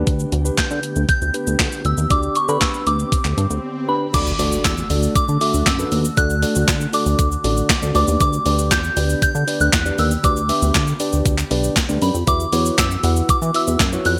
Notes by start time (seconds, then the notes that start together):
Already playing: D3 B3 D4 G4 B4
0.07 D2, kick, closed hi-hat, shaker
0.20 shaker
0.32 D2, closed hi-hat, shaker
0.45 D4 G4 B4, shaker
0.58 D3 G6, kick, snare, clap, closed hi-hat, shaker
0.71 D3, shaker
0.83 closed hi-hat, shaker
0.96 D2, shaker
1.09 G6, kick, closed hi-hat, shaker
1.22 D2, shaker
1.34 D4 G4 B4, closed hi-hat, shaker
1.47 D2, shaker
1.59 D3, kick, snare, clap, closed hi-hat, shaker
1.72 shaker
1.85 D2 E6, closed hi-hat, shaker
1.98 D#2, shaker
2.10 D2 D4 G4 D5 D6, kick, closed hi-hat, swell, shaker
2.23 shaker
2.35 C#6, closed hi-hat, shaker
2.48 D3 D4 G4 B4 B5, shaker
2.61 E6, kick, snare, clap, closed hi-hat, shaker
2.74 shaker
2.87 D2 D6, closed hi-hat, shaker
2.99 shaker
3.12 kick, closed hi-hat, shaker
3.25 D2, clap, shaker
3.38 G2, closed hi-hat, shaker
3.50 D2, shaker
3.88 D4 G4 B4 B5
4.13 D2 D3 A3 D4 F#4 A4 D5 D6, kick, closed hi-hat, crash, impact, shaker
4.27 shaker
4.39 D2 D4 F#4 A4 D5, open hi-hat, shaker
4.52 shaker
4.64 E2 E6, kick, snare, clap, closed hi-hat, shaker
4.77 shaker
4.90 D2 D4 F#4 A4 D5, open hi-hat, shaker
5.03 shaker
5.15 D3 D6, kick, closed hi-hat, shaker
5.28 D3, shaker
5.41 D4 F#4 A4 E5 D6, open hi-hat, shaker
5.54 D2, shaker
5.66 F#2 E6, kick, snare, clap, closed hi-hat, shaker
5.79 D4 F#4 A4 B4, shaker
5.92 D#2, open hi-hat, shaker
6.05 shaker
6.17 D2 D4 F#4 A4 D5 F#6, kick, closed hi-hat, shaker
6.30 shaker
6.42 D4 F#4 A4 D5, open hi-hat, shaker
6.56 D2, shaker
6.68 D3, kick, snare, clap, closed hi-hat, shaker
6.80 shaker
6.93 D4 F#4 A4 D5 D6, open hi-hat, shaker
7.06 D2, shaker
7.19 D2, kick, closed hi-hat, shaker
7.31 shaker
7.44 A1 D4 F#4 A4 D5, open hi-hat, shaker
7.57 shaker
7.70 kick, snare, clap, closed hi-hat, shaker
7.82 D2 D4 F#4 A4 D5, shaker
7.94 D2 B3 D4 G4 B4 D5 D6, open hi-hat, shaker
8.08 D#2, shaker
8.20 D2 D6, kick, closed hi-hat, shaker
8.33 shaker
8.46 D2 D4 G4 B4 D5, open hi-hat, shaker
8.59 shaker
8.71 E2 G6, kick, snare, clap, closed hi-hat, shaker
8.84 shaker
8.96 D2 D4 G4 B4 D5, open hi-hat, shaker
9.09 shaker
9.22 D3 G6, kick, closed hi-hat, shaker
9.35 D3, shaker
9.47 D4 G4 B4 D5, open hi-hat, shaker
9.60 D2 F#6, shaker
9.73 E2, kick, snare, clap, closed hi-hat, shaker
9.85 D4 G4 B4 D5, shaker
9.98 D#2 E6, open hi-hat, shaker
10.11 shaker
10.24 D2 D4 G4 B4 D5 D6, kick, closed hi-hat, shaker
10.36 shaker
10.49 D4 G4 B4 E5, open hi-hat, shaker
10.62 D2, shaker
10.74 D3, kick, snare, clap, closed hi-hat, shaker
10.87 shaker
11.00 D4 G4 B4 D5, open hi-hat, shaker
11.13 D2, shaker
11.26 D2, kick, closed hi-hat, shaker
11.38 clap, shaker
11.51 B1 D4 G4 B4 D5, open hi-hat, shaker
11.64 shaker
11.76 kick, snare, clap, closed hi-hat, shaker
11.89 D2 D4 G4 B4 D5, shaker
12.02 F#2 B5, open hi-hat, shaker
12.15 F2, shaker
12.27 E2 E3 B3 E4 F#4 B4 E5 D6, kick, closed hi-hat, shaker
12.40 shaker
12.52 E2 E4 F#4 B4 C#5, open hi-hat, shaker
12.66 shaker
12.78 F#2 E6, kick, snare, clap, closed hi-hat, shaker
12.91 shaker
13.03 E2 E4 F#4 B4 F#5, open hi-hat, shaker
13.16 shaker
13.29 E3 D6, kick, closed hi-hat, shaker
13.42 E3, shaker
13.54 E4 F#4 B4 E5 E6, open hi-hat, shaker
13.67 E2, shaker
13.80 F#2, kick, snare, clap, closed hi-hat, shaker
13.93 E4 F#4 B4 C#5, shaker
14.05 F2 F#6, open hi-hat, shaker